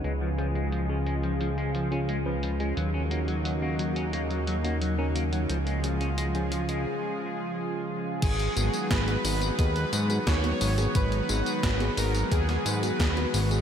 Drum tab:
CC |----------------|----------------|----------------|x---------------|
HH |x-xxx-xxxxxxx-xx|x-xxx-xxxxxxx-xx|xxxxxxxx--------|xxxxxxoxxxxxxxox|
TB |----------------|----------------|----------------|x-xxx-xxx-xxx-xx|
SD |----------------|----------------|----------------|----o-------o---|
BD |----------------|----------------|----------------|o---o---o---o---|

CC |----------------|
HH |xxxxxxoxxxxxxxox|
TB |x-xxx-xxx-xxx-xx|
SD |----o----o--o---|
BD |o---o---o---o---|